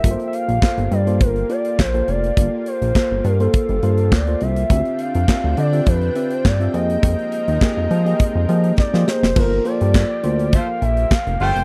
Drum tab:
CC |----------------|----------------|----------------|----------------|
HH |xxxx-xxxxxxx-xxx|x-xx--xxxxxx-xxx|xxxx--xxxxxx-xxx|xxxx--xxx-xx----|
CP |----x-------x---|----x-------x---|----x-------x---|----x-----------|
SD |----o-------o---|----o-------o---|----o-------o---|----o-------oooo|
BD |o---o---o---o---|o---o---o---o---|o---o---o---o---|o---o---o---o---|

CC |x---------------|
HH |--xx--xxx-xx-xox|
CP |----x-------x---|
SD |----o-------o---|
BD |o---o---o---o---|